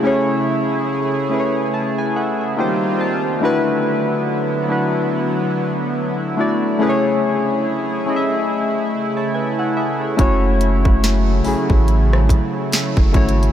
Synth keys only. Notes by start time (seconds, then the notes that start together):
0.03 A3 C#4 E4 G#4 C#5
1.29 A3 C#4 E4 G#4 B4
1.40 C#5
1.74 C#5 A5
1.98 B4 G#5
2.16 A4 E5 F#5
2.41 G#4 E5
2.56 A#3 D#4 F4 G4 C5 G5
3.01 A5
3.41 A3 D4 E4 F#4 B4
4.68 A3 D4 E4 F#4 B4
6.37 A3 D4 E4 F#4 D5
6.79 A3 C#4 E4 G#4 B4
6.89 C#5
8.06 A3 C#4 E4 G#4 D#5
8.16 E5
9.17 C#5 A5
9.34 B4 G#5
9.59 A4 F#5
9.77 G#4 E5
10.01 E4 C#5
10.17 A3 C#4 E4 F#4 C#5
11.44 A3 C#4 E4 F#4 G#4
13.13 A3 C#4 E4 F#4 C#5